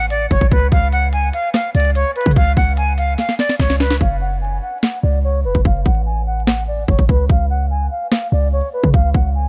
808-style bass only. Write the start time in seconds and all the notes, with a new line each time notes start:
Already playing: A1
0.31 F#1
0.41 A1
0.51 C#2
0.72 C#2
1.75 C#2
2.26 C#3
2.36 C#2
2.57 C#2
3.60 C#2
4.01 F#1
5.03 C#2
5.44 F1
5.55 F#1
5.65 F#1
5.86 A1
6.88 F#1
6.99 A1
7.09 C#2
7.29 C#2
8.32 C#2
8.84 C#3
8.94 C#2
9.14 C#2